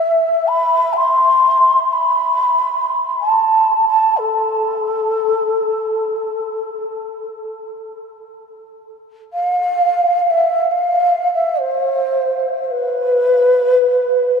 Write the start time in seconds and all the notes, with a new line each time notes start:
Already playing: E5
0.47 B5
0.93 E5 C6
1.92 B5
3.21 A5
3.88 A5
4.17 A4
9.33 F5
10.30 E5
10.71 F5
11.34 E5
11.59 C5
12.63 C5
12.71 B4